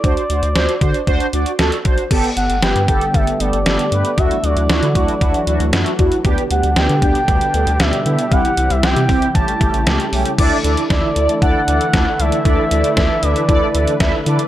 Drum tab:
CC |----------------|x---------------|----------------|----------------|
HH |xxxxxxxxxxxxxxxx|xxxxxxxxxxxxxxxx|xxxxxxxxxxxxxxxx|xxxxxxxxxxxxxxxx|
SD |----o-------o---|----o-------o---|----o-------o---|----o-------o---|
BD |o-----o-o-----o-|o-----o-o-------|o-----o-o-----o-|o-----o-o-------|

CC |----------------|x---------------|----------------|
HH |xxxxxxoxxxxxxxox|x-xxx-xxx-xxx-xx|x-xxx-xxx-xxx-xx|
SD |----o-------o---|----o-------o---|----o-------o---|
BD |o-----o-o-o-----|o---o---o---o---|o---o---o---o---|